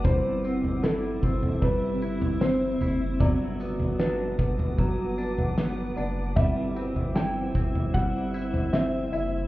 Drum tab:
TB |x-x-x-x---x-x-x-|x-x-x-x---x-x-x-|x-x-x-x---x-x-x-|
SD |----o-------o---|----o-------o---|----o-------o---|
FT |o--o---o---o--o-|o--o---o---o----|o--o---o---o----|
BD |o-----o-o-------|o-----o-o-------|o-----o-o-------|